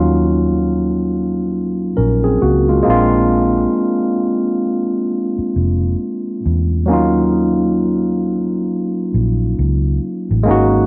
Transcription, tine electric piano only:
Already playing: F#3 A#3 C#4 D#4 F4
1.97 C#4 A#4
2.24 C4 G#4
2.42 A#3 F#4
2.69 G#3 F4
2.83 G#3 A#3 C4
2.88 D4 F4
6.86 F#3 A#3 C#4
6.91 D#4 F4
10.43 G#3 A#3
10.47 C#4 D#4 F#4

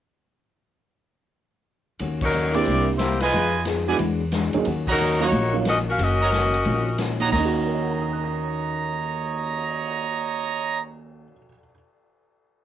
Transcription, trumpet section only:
3.21 F4 B4 D#5 G#5
3.87 F#4 D5 E5 G#5
4.86 F#4 C#5 D#5 A#5
5.20 F#4 C#5 D#5 A#5
6.20 F#4 C#5 D#5 A#5
7.19 F#4 C#5 D#5 A#5
7.31 C#5 D#5 A#5

